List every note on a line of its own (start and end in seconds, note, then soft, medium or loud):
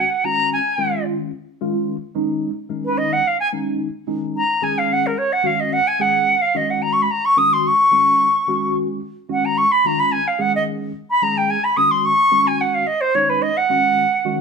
0.00 0.26 F#5 medium
0.24 0.58 D#3 medium
0.24 0.58 G#3 medium
0.24 0.59 C#4 medium
0.24 0.59 F#4 medium
0.24 0.52 A#5 loud
0.53 1.03 G#5 medium
0.78 1.30 D#3 medium
0.78 1.30 G#3 medium
0.78 1.30 C#4 medium
0.78 1.30 F4 medium
1.61 1.95 D#3 loud
1.61 1.95 G#3 medium
1.61 1.95 C#4 medium
1.61 1.96 F4 loud
2.15 2.50 D#3 medium
2.15 2.50 G#3 medium
2.15 2.50 C#4 medium
2.15 2.50 D#4 loud
2.69 3.21 D#3 medium
2.69 3.22 G#3 medium
2.69 3.22 C#4 medium
2.69 3.22 D#4 medium
2.85 2.99 B4 medium
2.97 3.14 D#5 medium
3.12 3.28 F#5 loud
3.27 3.39 F5 medium
3.40 3.48 G#5 loud
3.52 3.87 D#3 medium
3.52 3.87 G#3 medium
3.52 3.87 C#4 medium
3.52 3.87 D#4 medium
4.07 4.42 D#3 medium
4.07 4.42 G#3 medium
4.07 4.42 C#4 medium
4.07 4.42 D#4 loud
4.37 4.64 A#5 medium
4.62 5.14 D#3 medium
4.62 5.14 G#3 medium
4.62 5.14 C#4 medium
4.62 5.14 G#4 medium
4.62 4.79 G#5 medium
4.78 4.94 F5 medium
4.92 5.08 F#5 loud
5.06 5.19 A#4 medium
5.18 5.34 C#5 medium
5.32 5.47 F#5 loud
5.43 5.79 D#3 medium
5.43 5.79 G#3 medium
5.43 5.79 C#4 medium
5.43 5.79 F#4 medium
5.43 5.61 F5 medium
5.60 5.74 D#5 medium
5.73 5.89 F#5 loud
5.87 6.03 G#5 loud
5.99 6.34 D#3 medium
5.99 6.34 G#3 medium
5.99 6.34 C#4 medium
5.99 6.35 G#4 medium
5.99 6.43 F#5 loud
6.41 6.58 F5 medium
6.55 7.06 D#3 medium
6.55 7.06 G#3 medium
6.55 7.06 C#4 medium
6.55 7.07 F#4 medium
6.55 6.71 D#5 medium
6.70 6.83 F#5 medium
6.82 6.94 A#5 medium
6.92 7.03 C#6 medium
7.02 7.12 B5 medium
7.11 7.26 A#5 medium
7.25 7.39 C#6 loud
7.36 7.71 D#3 medium
7.36 7.71 G#3 medium
7.36 7.72 C#4 medium
7.36 7.72 F#4 medium
7.36 7.54 D#6 loud
7.53 7.68 C6 medium
7.67 8.76 C#6 loud
7.91 8.26 D#3 medium
7.91 8.26 G#3 medium
7.91 8.27 C#4 medium
7.91 8.27 F#4 medium
8.47 8.99 D#3 medium
8.47 8.99 G#3 medium
8.47 8.99 C#4 medium
8.47 8.99 F#4 loud
9.29 9.64 D#3 medium
9.29 9.64 G#3 medium
9.29 9.64 C#4 medium
9.29 9.64 F#4 medium
9.29 9.46 F#5 medium
9.45 9.59 A#5 medium
9.57 9.73 C#6 loud
9.71 9.88 B5 loud
9.84 10.19 D#3 medium
9.84 10.19 G#3 medium
9.84 10.19 C#4 medium
9.84 10.20 F4 medium
9.84 10.01 A#5 medium
9.99 10.13 B5 loud
10.12 10.29 G#5 loud
10.27 10.42 F5 medium
10.39 10.91 D#3 medium
10.39 10.91 G#3 medium
10.39 10.91 C#4 medium
10.39 10.91 G#4 medium
10.39 10.54 F#5 medium
10.55 10.63 D#5 medium
11.10 11.24 B5 loud
11.22 11.56 D#3 medium
11.22 11.56 G#3 medium
11.22 11.57 C#4 medium
11.22 11.57 G#4 medium
11.22 11.39 A#5 medium
11.37 11.51 G5 medium
11.50 11.65 G#5 loud
11.64 11.78 B5 medium
11.77 12.11 D#3 medium
11.77 12.12 G#3 medium
11.77 12.12 C#4 medium
11.77 12.12 F#4 medium
11.77 11.92 D#6 loud
11.91 12.06 C6 medium
12.05 12.48 C#6 loud
12.31 12.83 D#3 medium
12.31 12.83 G#3 medium
12.31 12.83 C#4 medium
12.31 12.83 F#4 loud
12.47 12.62 G#5 medium
12.61 12.76 F#5 medium
12.74 12.88 F5 medium
12.87 13.02 D#5 medium
13.01 13.16 C5 loud
13.15 13.49 D#3 medium
13.15 13.49 G#3 medium
13.15 13.49 C#4 medium
13.15 13.49 D#4 medium
13.15 13.31 C#5 medium
13.29 13.43 B4 medium
13.42 13.58 D#5 loud
13.57 14.39 F#5 loud
13.69 14.04 D#3 medium
13.69 14.04 G#3 medium
13.69 14.04 C#4 medium
13.69 14.04 F#4 medium
14.25 14.41 D#3 loud
14.25 14.41 G#3 loud
14.25 14.41 C#4 medium
14.25 14.41 F#4 loud